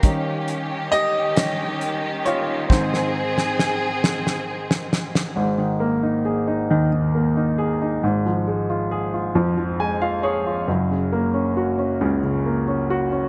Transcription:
<<
  \new Staff \with { instrumentName = "String section" } { \time 6/8 \key aes \mixolydian \tempo 4. = 45 << { <des' g'>2. | <c' aes'>2. | r2. | r2. |
r2. | } \\ { ees2.~ | ees2. | r2. | r2. |
r2. | } >> }
  \new Staff \with { instrumentName = "Grand piano" } { \time 6/8 \key aes \mixolydian <bes' f''>8 r8 <g' ees''>4. <f' des''>8 | <ees' c''>2 r4 | r2. | r2 aes''16 f''16 des''8 |
r2. | }
  \new Staff \with { instrumentName = "Grand piano" } { \clef bass \time 6/8 \key aes \mixolydian <ees g des'>8. r8. <ees g des'>8 r4 | <aes, ees c'>8. r2 r16 | <aes,, aes,>16 ees16 bes16 ees'16 aes'16 ees'16 <ees, ees>16 ees16 bes16 ees'16 aes'16 ees'16 | <aes,, aes,>16 f16 aes16 f'16 aes'16 f'16 <f, f>16 f16 aes16 f'16 aes'16 f'16 |
<ges,, ges,>16 des16 bes16 des'16 ges'16 des'16 <des, des>16 des16 bes16 des'16 ges'16 des'16 | }
  \new DrumStaff \with { instrumentName = "Drums" } \drummode { \time 6/8 <hh bd>8 hh8 hh8 <hh sn>8 hh8 hh8 | <bd sn>16 sn8 sn16 sn8 sn16 sn8 sn16 sn16 sn16 | r4. r4. | r4. r4. |
r4. r4. | }
>>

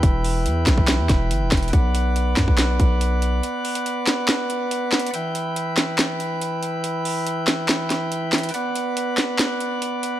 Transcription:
<<
  \new Staff \with { instrumentName = "Pipe organ" } { \time 4/4 \key e \minor \tempo 4 = 141 <e e' b' g''>1 | <b b' d'' fis''>1~ | <b b' d'' fis''>1 | <e e' g''>1~ |
<e e' g''>1 | <b b' d'' fis''>1 | }
  \new Staff \with { instrumentName = "808-style bass" } { \clef bass \time 4/4 \key e \minor e,,4 e,8 b,,8. e,16 e,,8 g,,16 e,,16 e,,8 | b,,4. fis,16 b,,8. b,,4. | r1 | r1 |
r1 | r1 | }
  \new DrumStaff \with { instrumentName = "Drums" } \drummode { \time 4/4 <hh bd>8 hho8 hh8 <hc hh bd sn>16 bd16 <hc hh sn>8 <hh bd sn>8 hh8 <hc hh bd sn>32 hh32 hh32 hh32 | <hh bd>8 hh8 hh8 <hc hh bd sn>16 bd16 <hc hh sn>8 <hh bd>8 hh8 hh8 | hh8 <hh hho>16 hh16 hh8 <hc hh sn>8 <hc hh sn>8 hh8 \tuplet 3/2 { hh16 r16 r16 <hc hh sn>16 hh16 hh16 } | hh8 hh8 hh8 <hc hh sn>8 <hc hh sn>8 hh8 hh8 hh8 |
hh8 hho8 hh8 <hc hh sn>8 <hc hh sn>8 <hh sn>8 hh8 <hc hh sn>32 hh32 hh32 hh32 | hh8 hh8 hh8 <hc hh sn>8 <hc hh sn>8 hh8 hh8 hh8 | }
>>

